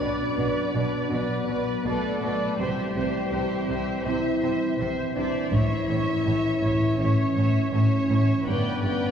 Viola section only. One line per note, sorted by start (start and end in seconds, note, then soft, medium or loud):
0.00 0.37 B4 soft
0.00 0.36 D5 soft
0.38 0.74 B4 soft
0.38 0.74 D5 soft
0.75 1.11 B4 soft
0.75 1.10 D5 soft
1.12 1.48 B4 soft
1.12 1.48 D5 soft
1.49 1.85 B4 soft
1.49 1.84 D5 soft
1.85 2.21 B4 soft
1.85 2.21 D5 soft
2.22 2.58 B4 soft
2.22 2.58 D5 soft
2.59 2.95 C5 soft
2.96 3.31 C5 soft
3.32 3.68 C5 soft
3.70 4.04 C5 soft
4.05 4.41 C5 soft
4.42 4.78 C5 soft
4.79 5.15 C5 soft
5.16 5.52 C5 soft
5.53 5.88 C#5 soft
5.89 6.25 C#5 soft
6.26 6.61 C#5 soft
6.63 6.97 C#5 soft
6.99 7.33 C#5 soft
7.35 7.70 C#5 soft
7.71 8.07 C#5 soft
8.08 8.45 C#5 soft
8.45 8.81 B4 soft
8.45 8.81 D5 soft
8.82 9.11 B4 soft
8.82 9.11 D5 soft